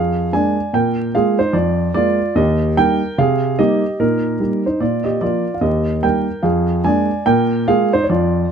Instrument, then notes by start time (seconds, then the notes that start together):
grand piano
Already playing: F2 G#4 F5
0.33 G#3 A#3 D4 D5 G#5
0.73 A#2 A#4 G5
1.15 G#3 A#3 F4 G#4 F5
1.39 D#4 C5
1.53 F2 F4 D5
1.94 G#3 A#3 F4 D5
2.35 D#2 G4 D#5
2.77 G3 A#3 D#4 A#4 G5
3.18 C3 G#4 F5
3.58 G3 A#3 D#4 G4 D#5
4.00 A#2 D#4 A#4
4.40 G3 A#3 D#4
4.66 D#4 C5
4.80 A#2 F4 D5
5.04 G4 D#5
5.21 F3 A#3 F4 D5
5.54 F5
5.61 D#2 G4 D#5
6.03 G3 A#3 D#4 A#4 G5
6.43 F2 G#4 F5
6.84 G#3 A#3 D4 D5 G#5
7.26 A#2 A#4 G5
7.68 G#3 A#3 F4 G#4 F5
7.93 D#4 C5
8.03 C#5
8.09 F2 F4 D5